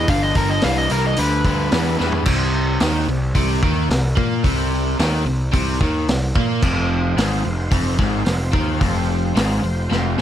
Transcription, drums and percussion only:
0.08 kick, open hi-hat
0.35 kick, open hi-hat
0.62 snare, open hi-hat
0.90 open hi-hat
1.16 open hi-hat
1.45 kick, open hi-hat
1.72 snare, open hi-hat
2.00 snare
2.12 floor tom
2.26 kick, crash
2.80 snare, open hi-hat
3.35 kick, open hi-hat
3.63 kick
3.91 snare, open hi-hat
4.17 kick
4.44 kick, open hi-hat
4.99 snare, open hi-hat
5.54 kick, open hi-hat
5.81 kick, snare
6.08 snare, open hi-hat
6.36 kick
6.62 kick, crash
7.18 snare, open hi-hat
7.72 kick, open hi-hat
7.99 kick, snare
8.26 snare, open hi-hat
8.53 kick
8.81 kick, open hi-hat
9.37 snare, open hi-hat
9.92 snare
10.18 snare

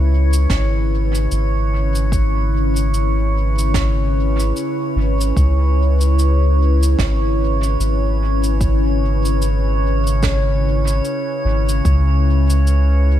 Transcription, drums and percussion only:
0.33 cabasa
0.50 kick, snare, cabasa
1.15 cabasa
1.31 cabasa
1.95 cabasa
2.12 kick, cabasa
2.76 cabasa
2.94 cabasa
3.59 cabasa
3.74 kick, snare, cabasa
4.40 cabasa
4.56 cabasa
5.21 cabasa
5.37 kick, cabasa
6.01 cabasa
6.19 cabasa
6.83 cabasa
6.99 kick, snare, cabasa
7.63 cabasa
7.81 cabasa
8.44 cabasa
8.61 kick, cabasa
9.25 cabasa
9.42 cabasa
10.07 cabasa
10.23 kick, snare, cabasa
10.88 cabasa
11.05 cabasa
11.69 cabasa
11.85 kick, cabasa
12.50 cabasa
12.67 cabasa

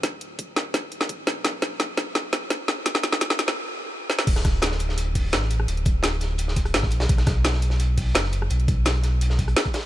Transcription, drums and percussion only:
0.03 kick, snare, closed hi-hat
0.21 closed hi-hat
0.39 kick, closed hi-hat
0.56 snare, closed hi-hat
0.74 kick, snare, closed hi-hat
0.92 closed hi-hat
1.01 snare
1.09 kick, closed hi-hat
1.27 snare, closed hi-hat
1.45 kick, snare, closed hi-hat
1.62 snare, closed hi-hat
1.80 kick, snare, closed hi-hat
1.97 snare, closed hi-hat
2.15 kick, snare, closed hi-hat
2.33 snare, closed hi-hat
2.50 kick, snare, closed hi-hat
2.68 snare, closed hi-hat
2.86 kick, snare, closed hi-hat
2.95 snare
3.03 snare, closed hi-hat
3.13 snare
3.21 kick, snare, closed hi-hat
3.30 snare
3.39 snare, closed hi-hat
3.48 snare
4.10 snare
4.19 snare
4.27 kick, closed hi-hat, crash
4.36 cross-stick, snare, closed hi-hat
4.45 kick, cross-stick, snare, closed hi-hat
4.62 snare, closed hi-hat
4.71 snare
4.79 closed hi-hat
4.89 snare
4.98 closed hi-hat
5.15 kick, closed hi-hat, open hi-hat
5.32 snare, closed hi-hat
5.42 snare
5.50 closed hi-hat
5.60 cross-stick
5.68 closed hi-hat
5.77 closed hi-hat
5.85 kick, closed hi-hat
6.03 snare, closed hi-hat
6.12 closed hi-hat
6.21 snare, closed hi-hat
6.38 closed hi-hat
6.48 snare
6.56 kick, closed hi-hat
6.65 cross-stick, closed hi-hat
6.74 snare, closed hi-hat
6.83 kick, snare
6.91 closed hi-hat
7.00 snare, closed hi-hat
7.09 kick, closed hi-hat
7.18 cross-stick, snare, closed hi-hat
7.26 kick, cross-stick, snare, closed hi-hat
7.44 snare, closed hi-hat
7.53 snare
7.62 closed hi-hat
7.70 snare
7.79 closed hi-hat
7.98 kick, closed hi-hat, open hi-hat
8.15 snare, closed hi-hat
8.24 snare
8.32 closed hi-hat
8.42 cross-stick
8.50 closed hi-hat
8.60 closed hi-hat
8.68 kick, closed hi-hat
8.85 snare, closed hi-hat
8.94 closed hi-hat
9.03 snare, closed hi-hat
9.21 closed hi-hat
9.30 snare
9.39 kick, closed hi-hat
9.48 cross-stick, closed hi-hat
9.56 snare, closed hi-hat
9.65 kick, closed hi-hat
9.73 snare, closed hi-hat
9.83 closed hi-hat

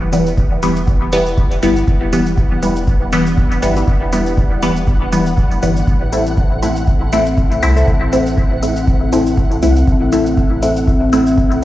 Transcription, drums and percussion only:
0.13 open hi-hat, cabasa
0.26 cabasa
0.38 kick, cabasa
0.63 open hi-hat, cabasa
0.77 cabasa
0.88 kick, cabasa
1.13 open hi-hat, cabasa
1.27 cabasa
1.38 kick, cabasa
1.52 open hi-hat
1.63 open hi-hat, cabasa
1.77 cabasa
1.88 kick, cabasa
2.13 open hi-hat, cabasa
2.27 cabasa
2.38 kick, cabasa
2.63 open hi-hat, cabasa
2.77 cabasa
2.88 kick, cabasa
3.13 open hi-hat, cabasa
3.27 cabasa
3.38 kick, cabasa
3.52 open hi-hat
3.63 open hi-hat, cabasa
3.76 cabasa
3.88 kick, cabasa
4.13 open hi-hat, cabasa
4.26 cabasa
4.38 kick, cabasa
4.63 open hi-hat, cabasa
4.76 cabasa
4.87 kick, cabasa
5.12 open hi-hat, cabasa
5.26 cabasa
5.37 kick, cabasa
5.51 open hi-hat
5.63 open hi-hat, cabasa
5.76 cabasa
5.87 kick, cabasa
6.13 open hi-hat, cabasa
6.27 cabasa
6.37 kick, cabasa
6.63 open hi-hat, cabasa
6.76 cabasa
6.88 kick, cabasa
7.13 open hi-hat, cabasa
7.26 cabasa
7.38 kick, cabasa
7.52 open hi-hat
7.63 open hi-hat, cabasa
7.77 cabasa
7.88 kick, cabasa
8.13 open hi-hat, cabasa
8.27 cabasa
8.38 kick, cabasa
8.63 open hi-hat, cabasa
8.76 cabasa
8.88 kick, cabasa
9.13 open hi-hat, cabasa
9.26 cabasa
9.37 kick, cabasa
9.51 open hi-hat
9.63 open hi-hat, cabasa
9.76 cabasa
9.87 kick, cabasa
10.13 open hi-hat, cabasa
10.26 cabasa
10.38 kick, cabasa
10.63 open hi-hat, cabasa
10.76 cabasa
10.88 kick, cabasa
11.13 open hi-hat, cabasa
11.27 cabasa
11.38 kick, cabasa
11.52 open hi-hat

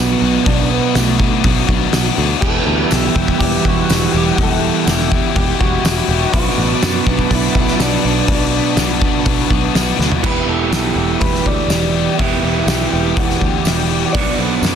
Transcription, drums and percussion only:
0.46 kick, open hi-hat
0.95 snare, open hi-hat, tambourine
1.20 kick
1.44 kick, open hi-hat
1.69 kick
1.93 snare, open hi-hat, tambourine
2.42 kick, crash
2.91 snare, open hi-hat, tambourine
3.16 kick
3.28 kick
3.41 kick, open hi-hat
3.65 kick
3.90 snare, open hi-hat, tambourine
4.38 kick, open hi-hat
4.87 snare, open hi-hat, tambourine
5.00 snare
5.12 kick
5.36 kick, open hi-hat
5.61 kick
5.85 snare, open hi-hat, tambourine
6.33 kick, open hi-hat
6.82 snare, open hi-hat, tambourine
7.07 kick
7.19 kick
7.31 kick, open hi-hat
7.55 kick
7.68 snare
7.79 snare, open hi-hat, tambourine
8.28 kick, open hi-hat
8.77 snare, open hi-hat, tambourine
9.02 kick
9.26 kick, open hi-hat
9.50 kick
9.75 snare, open hi-hat, tambourine
10.01 snare
10.12 floor tom
10.24 kick, crash
10.72 snare, open hi-hat, tambourine
11.21 kick, open hi-hat
11.35 snare
11.46 kick
11.70 snare, open hi-hat, tambourine
12.19 kick, open hi-hat
12.68 snare, open hi-hat, tambourine
13.17 kick, open hi-hat
13.30 snare
13.41 kick
13.65 snare, open hi-hat, tambourine
14.15 kick, open hi-hat
14.63 snare, open hi-hat, tambourine

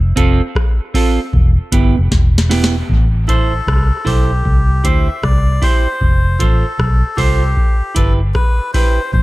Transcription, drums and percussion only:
0.17 kick, closed hi-hat
0.55 kick, cross-stick
0.94 kick, open hi-hat
1.33 kick
1.72 kick, closed hi-hat
2.11 kick, snare
2.38 snare
2.51 snare, open hi-hat
2.64 snare
2.89 kick
3.29 kick, closed hi-hat
3.67 kick, cross-stick
4.06 kick, open hi-hat
4.45 kick
4.84 kick, closed hi-hat
5.23 kick, cross-stick
5.62 kick, open hi-hat
6.01 kick
6.40 kick, closed hi-hat
6.79 kick, cross-stick
7.18 kick, open hi-hat
7.57 kick
7.96 kick, closed hi-hat
8.35 kick, cross-stick
8.74 kick, open hi-hat
9.13 kick

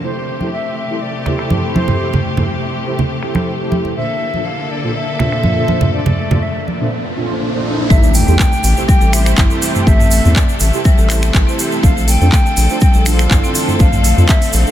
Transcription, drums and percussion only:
0.40 high conga
1.26 finger snap, low conga
1.39 finger snap
1.50 mid tom, high conga
1.76 high conga
1.88 mid tom, low conga
2.13 mid tom, high conga, low conga
2.37 mid tom, high conga, low conga
2.99 low conga
3.23 finger snap
3.35 finger snap, high conga
3.72 high conga
3.85 high conga
4.34 high conga
5.19 finger snap, low conga
5.32 finger snap
5.43 mid tom, high conga
5.68 high conga
5.81 mid tom, low conga
6.06 mid tom, high conga, low conga
6.31 mid tom, high conga, low conga
6.68 high conga
7.90 kick, shaker
8.03 shaker
8.14 open hi-hat, shaker
8.28 shaker
8.39 kick, clap, shaker
8.52 shaker
8.64 open hi-hat, shaker
8.77 shaker
8.89 kick, shaker
9.01 shaker
9.13 finger snap, open hi-hat, shaker
9.26 finger snap, shaker
9.37 kick, clap, mid tom, shaker
9.50 shaker
9.62 open hi-hat, shaker
9.75 mid tom, shaker
9.87 kick, shaker
10.00 mid tom, shaker
10.11 open hi-hat, shaker
10.24 mid tom, shaker
10.36 kick, clap, shaker
10.49 shaker
10.60 open hi-hat, shaker
10.73 shaker
10.85 kick, shaker
10.98 shaker
11.10 finger snap, clap, open hi-hat, shaker
11.22 finger snap, shaker
11.34 kick, clap, shaker
11.49 shaker
11.59 open hi-hat, shaker
11.72 shaker
11.84 kick, shaker
11.97 shaker
12.08 open hi-hat, shaker
12.21 shaker
12.32 kick, clap, shaker
12.46 shaker
12.57 open hi-hat, shaker
12.69 shaker
12.81 kick, shaker
12.94 shaker
13.06 finger snap, open hi-hat, shaker
13.19 finger snap, shaker
13.31 kick, clap, mid tom, shaker
13.44 shaker
13.55 open hi-hat, shaker
13.68 mid tom, shaker
13.80 kick, shaker
13.93 mid tom, shaker
14.04 open hi-hat, shaker
14.17 mid tom, shaker
14.29 kick, clap, shaker
14.42 open hi-hat, shaker
14.53 open hi-hat, shaker
14.67 shaker

